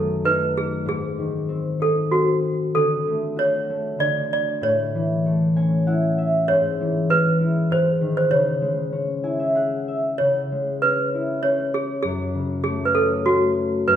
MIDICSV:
0, 0, Header, 1, 3, 480
1, 0, Start_track
1, 0, Key_signature, 4, "minor"
1, 0, Tempo, 622407
1, 679, Time_signature, 3, 2, 24, 8
1, 4050, Tempo, 607903
1, 6450, Tempo, 631579
1, 8370, Tempo, 610998
1, 10840, End_track
2, 0, Start_track
2, 0, Title_t, "Toy piano"
2, 0, Program_c, 0, 8
2, 0, Note_on_c, 0, 69, 71
2, 196, Note_on_c, 0, 71, 82
2, 220, Note_off_c, 0, 69, 0
2, 421, Note_off_c, 0, 71, 0
2, 443, Note_on_c, 0, 68, 69
2, 662, Note_off_c, 0, 68, 0
2, 683, Note_on_c, 0, 68, 73
2, 1403, Note_on_c, 0, 69, 70
2, 1418, Note_off_c, 0, 68, 0
2, 1510, Note_off_c, 0, 69, 0
2, 1631, Note_on_c, 0, 66, 70
2, 1972, Note_off_c, 0, 66, 0
2, 2120, Note_on_c, 0, 69, 74
2, 2577, Note_off_c, 0, 69, 0
2, 2614, Note_on_c, 0, 73, 82
2, 3086, Note_on_c, 0, 74, 88
2, 3107, Note_off_c, 0, 73, 0
2, 3331, Note_off_c, 0, 74, 0
2, 3340, Note_on_c, 0, 74, 78
2, 3573, Note_on_c, 0, 73, 77
2, 3582, Note_off_c, 0, 74, 0
2, 4744, Note_off_c, 0, 73, 0
2, 5022, Note_on_c, 0, 73, 89
2, 5512, Note_on_c, 0, 71, 80
2, 5514, Note_off_c, 0, 73, 0
2, 5951, Note_off_c, 0, 71, 0
2, 5999, Note_on_c, 0, 72, 83
2, 6346, Note_off_c, 0, 72, 0
2, 6355, Note_on_c, 0, 72, 76
2, 6464, Note_off_c, 0, 72, 0
2, 6464, Note_on_c, 0, 73, 77
2, 7379, Note_off_c, 0, 73, 0
2, 7887, Note_on_c, 0, 73, 73
2, 8337, Note_off_c, 0, 73, 0
2, 8372, Note_on_c, 0, 71, 73
2, 8849, Note_on_c, 0, 73, 76
2, 8870, Note_off_c, 0, 71, 0
2, 9074, Note_off_c, 0, 73, 0
2, 9097, Note_on_c, 0, 68, 71
2, 9204, Note_off_c, 0, 68, 0
2, 9319, Note_on_c, 0, 68, 74
2, 9790, Note_off_c, 0, 68, 0
2, 9799, Note_on_c, 0, 68, 76
2, 9970, Note_on_c, 0, 71, 61
2, 9999, Note_off_c, 0, 68, 0
2, 10039, Note_off_c, 0, 71, 0
2, 10043, Note_on_c, 0, 69, 70
2, 10272, Note_off_c, 0, 69, 0
2, 10286, Note_on_c, 0, 66, 77
2, 10623, Note_off_c, 0, 66, 0
2, 10773, Note_on_c, 0, 71, 84
2, 10840, Note_off_c, 0, 71, 0
2, 10840, End_track
3, 0, Start_track
3, 0, Title_t, "Harp"
3, 0, Program_c, 1, 46
3, 0, Note_on_c, 1, 42, 58
3, 0, Note_on_c, 1, 51, 47
3, 0, Note_on_c, 1, 54, 43
3, 0, Note_on_c, 1, 57, 44
3, 0, Note_on_c, 1, 61, 48
3, 188, Note_on_c, 1, 63, 52
3, 661, Note_on_c, 1, 44, 59
3, 707, Note_off_c, 1, 57, 0
3, 717, Note_off_c, 1, 42, 0
3, 717, Note_off_c, 1, 51, 0
3, 717, Note_off_c, 1, 54, 0
3, 809, Note_off_c, 1, 61, 0
3, 915, Note_on_c, 1, 51, 45
3, 1146, Note_on_c, 1, 60, 44
3, 1381, Note_off_c, 1, 63, 0
3, 1384, Note_on_c, 1, 63, 45
3, 1628, Note_off_c, 1, 60, 0
3, 1631, Note_on_c, 1, 60, 47
3, 2123, Note_on_c, 1, 50, 52
3, 2160, Note_off_c, 1, 44, 0
3, 2160, Note_off_c, 1, 51, 0
3, 2170, Note_off_c, 1, 63, 0
3, 2367, Note_on_c, 1, 57, 41
3, 2596, Note_on_c, 1, 66, 43
3, 2848, Note_off_c, 1, 57, 0
3, 2851, Note_on_c, 1, 57, 43
3, 3066, Note_off_c, 1, 50, 0
3, 3075, Note_on_c, 1, 50, 50
3, 3558, Note_on_c, 1, 45, 54
3, 3608, Note_off_c, 1, 50, 0
3, 3815, Note_on_c, 1, 52, 45
3, 3944, Note_off_c, 1, 60, 0
3, 4051, Note_off_c, 1, 57, 0
3, 4054, Note_on_c, 1, 57, 43
3, 4297, Note_on_c, 1, 80, 57
3, 4302, Note_on_c, 1, 61, 46
3, 4485, Note_off_c, 1, 66, 0
3, 4537, Note_on_c, 1, 78, 65
3, 4541, Note_on_c, 1, 64, 50
3, 4783, Note_on_c, 1, 76, 59
3, 5041, Note_on_c, 1, 44, 59
3, 5054, Note_off_c, 1, 45, 0
3, 5054, Note_off_c, 1, 52, 0
3, 5089, Note_off_c, 1, 57, 0
3, 5277, Note_on_c, 1, 52, 46
3, 5482, Note_off_c, 1, 80, 0
3, 5521, Note_on_c, 1, 56, 47
3, 5748, Note_off_c, 1, 64, 0
3, 5751, Note_on_c, 1, 64, 47
3, 5807, Note_off_c, 1, 78, 0
3, 5976, Note_off_c, 1, 44, 0
3, 5986, Note_on_c, 1, 44, 60
3, 6014, Note_off_c, 1, 52, 0
3, 6014, Note_off_c, 1, 56, 0
3, 6144, Note_off_c, 1, 76, 0
3, 6226, Note_on_c, 1, 51, 48
3, 6274, Note_off_c, 1, 64, 0
3, 6461, Note_on_c, 1, 49, 58
3, 6487, Note_off_c, 1, 44, 0
3, 6487, Note_off_c, 1, 51, 0
3, 6584, Note_off_c, 1, 61, 0
3, 6697, Note_on_c, 1, 56, 44
3, 6931, Note_on_c, 1, 61, 45
3, 7167, Note_on_c, 1, 64, 46
3, 7169, Note_on_c, 1, 80, 54
3, 7289, Note_on_c, 1, 76, 54
3, 7408, Note_on_c, 1, 68, 46
3, 7413, Note_on_c, 1, 78, 56
3, 7655, Note_off_c, 1, 76, 0
3, 7658, Note_on_c, 1, 76, 52
3, 7892, Note_off_c, 1, 49, 0
3, 7901, Note_on_c, 1, 49, 57
3, 7927, Note_off_c, 1, 56, 0
3, 8141, Note_on_c, 1, 56, 44
3, 8309, Note_off_c, 1, 80, 0
3, 8380, Note_off_c, 1, 61, 0
3, 8384, Note_on_c, 1, 61, 46
3, 8624, Note_off_c, 1, 64, 0
3, 8627, Note_on_c, 1, 64, 44
3, 8644, Note_off_c, 1, 78, 0
3, 8858, Note_off_c, 1, 61, 0
3, 8862, Note_on_c, 1, 61, 51
3, 8988, Note_off_c, 1, 76, 0
3, 9162, Note_off_c, 1, 68, 0
3, 9330, Note_on_c, 1, 42, 56
3, 9372, Note_off_c, 1, 49, 0
3, 9372, Note_off_c, 1, 56, 0
3, 9569, Note_on_c, 1, 49, 47
3, 9816, Note_on_c, 1, 57, 46
3, 10047, Note_off_c, 1, 61, 0
3, 10051, Note_on_c, 1, 61, 48
3, 10288, Note_off_c, 1, 57, 0
3, 10291, Note_on_c, 1, 57, 53
3, 10679, Note_off_c, 1, 64, 0
3, 10762, Note_off_c, 1, 42, 0
3, 10772, Note_on_c, 1, 42, 61
3, 10809, Note_off_c, 1, 49, 0
3, 10840, Note_off_c, 1, 42, 0
3, 10840, Note_off_c, 1, 57, 0
3, 10840, Note_off_c, 1, 61, 0
3, 10840, End_track
0, 0, End_of_file